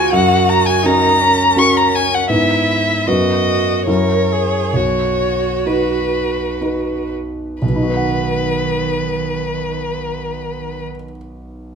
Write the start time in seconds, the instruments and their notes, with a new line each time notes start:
Already playing: grand piano F4 G#4 B4, cello F#4, violin G#5
0.13 grand piano F#2, violin F#5
0.49 violin A#5
0.66 violin G#5
0.83 grand piano C#4 F#4 A#4, cello D#4, violin A#5
1.21 cello C#4
1.56 grand piano C#4 F#4 A#4, violin C#6
1.77 violin A#5
1.95 violin G#5
2.14 violin F#5
2.29 grand piano G#2 B3 E4 B4, cello E4, violin E5
3.07 grand piano F#2 B3 F#4 B4, cello F#4, violin D#5
3.87 grand piano F#2 E4 F#4 A#4, cello A#4, violin C#5
4.32 cello G#4
4.73 grand piano B1, cello F#4, violin C#5
5.66 grand piano D#4 F#4 B4, violin B4
6.61 grand piano D#4 F#4 B4
7.62 grand piano B1, cello D#3, violin B4
7.69 grand piano B2
7.76 grand piano D#4
7.83 grand piano F#4
7.89 grand piano B4
7.97 grand piano F#5